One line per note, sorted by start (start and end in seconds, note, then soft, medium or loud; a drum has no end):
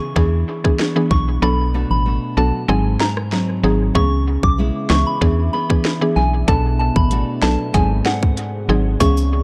0.00 0.16 C#3 medium
0.00 0.79 B3 medium
0.00 0.23 E4 medium
0.00 0.23 G#4 medium
0.16 0.44 E2 loud
0.16 0.60 E3 medium
0.16 1.49 E3 medium
0.16 0.60 B3 medium
0.16 0.61 D4 medium
0.16 0.61 G#4 loud
0.16 kick medium
0.64 0.81 E3 medium
0.64 0.81 B3 medium
0.64 0.81 D4 medium
0.64 0.81 G#4 medium
0.64 kick loud
0.64 cross-stick medium
0.79 1.49 B3 medium
0.79 1.50 D4 medium
0.79 1.50 G#4 medium
0.79 snare loud
0.96 1.12 E3 medium
0.96 1.12 B3 medium
0.96 1.12 D4 medium
0.96 1.12 G#4 medium
1.11 1.39 B1 medium
1.11 1.23 C#6 medium
1.11 kick medium
1.42 1.85 B1 loud
1.42 2.68 B2 medium
1.42 2.01 F#3 medium
1.42 2.01 B3 medium
1.42 2.01 D4 medium
1.42 2.01 A4 loud
1.42 1.66 B5 medium
1.74 2.04 A3 medium
1.74 2.76 D4 medium
1.74 2.36 F#4 medium
1.91 2.19 A1 medium
1.91 2.14 B5 medium
2.06 2.76 A3 medium
2.37 2.52 B1 loud
2.37 2.55 F#3 medium
2.37 2.55 B3 medium
2.37 2.55 D4 medium
2.37 2.75 F#4 medium
2.37 2.55 A4 medium
2.37 2.61 A5 medium
2.68 2.97 G#1 medium
2.68 4.02 G#2 medium
2.68 3.56 F#3 medium
2.68 3.56 C4 medium
2.68 3.57 D#4 medium
2.68 3.57 G#4 loud
2.68 2.81 G#5 medium
3.00 3.13 A#5 medium
3.00 snare loud
3.17 cross-stick medium
3.32 4.02 F#3 medium
3.32 4.02 C4 medium
3.32 4.03 D#4 medium
3.32 snare medium
3.63 3.92 G#1 loud
3.63 3.93 F#3 medium
3.63 3.93 C4 medium
3.63 3.93 D#4 medium
3.63 3.93 G#4 medium
3.95 4.38 C#2 loud
3.95 5.21 C#3 medium
3.95 4.53 E3 medium
3.95 4.54 B3 medium
3.95 4.54 C#4 medium
3.95 5.21 C#4 medium
3.95 4.54 G#4 loud
3.95 5.21 B4 medium
3.95 6.46 E5 medium
3.95 4.19 C#6 medium
3.95 kick loud
4.43 4.71 B1 medium
4.43 4.55 D6 medium
4.43 kick medium
4.58 5.28 G#3 medium
4.58 5.53 B3 medium
4.58 5.29 E4 medium
4.90 5.05 C#2 medium
4.90 5.08 E3 medium
4.90 5.08 B3 medium
4.90 5.08 C#4 medium
4.90 5.08 G#4 medium
4.90 5.02 C#6 medium
4.90 snare loud
5.07 5.18 B5 medium
5.21 5.50 E2 loud
5.21 5.66 E3 medium
5.21 6.55 E3 medium
5.21 5.66 B3 medium
5.21 5.66 D4 medium
5.21 6.47 D4 medium
5.21 5.66 G#4 loud
5.21 6.47 G#4 medium
5.21 kick medium
5.53 6.55 B3 medium
5.53 5.66 B5 medium
5.70 5.86 E3 medium
5.70 5.86 B3 medium
5.70 5.86 D4 medium
5.70 5.86 G#4 medium
5.70 kick medium
5.85 snare loud
6.01 6.18 E3 medium
6.01 6.18 B3 medium
6.01 6.18 D4 medium
6.01 6.18 G#4 medium
6.16 6.44 B1 medium
6.16 6.29 G#5 medium
6.48 6.91 B1 loud
6.48 7.74 B2 medium
6.48 7.06 F#3 medium
6.48 7.06 B3 medium
6.48 7.73 B3 medium
6.48 7.06 D4 medium
6.48 7.73 A4 medium
6.48 7.07 A4 loud
6.48 7.73 D5 medium
6.48 6.60 A5 medium
6.48 kick loud
6.48 closed hi-hat medium
6.79 6.92 A5 medium
6.96 7.24 A1 loud
6.96 7.20 B5 medium
6.96 kick medium
7.11 7.81 A3 medium
7.11 7.81 D4 medium
7.11 7.82 F#4 medium
7.11 closed hi-hat medium
7.42 7.57 B1 loud
7.42 7.61 F#3 medium
7.42 7.61 B3 medium
7.42 7.61 D4 medium
7.42 7.61 A4 medium
7.42 7.66 A5 medium
7.42 snare loud
7.74 8.02 G#1 loud
7.74 9.07 G#2 medium
7.74 8.62 F#3 loud
7.74 8.99 C4 medium
7.74 8.62 C4 medium
7.74 8.62 D#4 medium
7.74 8.99 G#4 medium
7.74 8.62 G#4 loud
7.74 8.99 F#5 medium
7.74 7.87 G#5 medium
7.74 kick medium
7.74 closed hi-hat medium
8.06 9.07 C4 medium
8.06 8.18 F#5 medium
8.06 snare loud
8.23 kick loud
8.37 closed hi-hat medium
8.69 8.97 G#1 loud
8.69 8.98 F#3 medium
8.69 8.98 C4 medium
8.69 8.98 D#4 medium
8.69 8.98 G#4 medium
9.00 9.43 C#2 loud
9.00 9.43 C#3 medium
9.00 9.43 E3 loud
9.00 9.43 B3 medium
9.00 9.43 C#4 medium
9.00 9.43 G#4 loud
9.00 9.43 B4 medium
9.00 9.43 E5 medium
9.00 9.24 C#6 loud
9.00 kick loud
9.00 closed hi-hat medium
9.00 maracas medium
9.17 maracas soft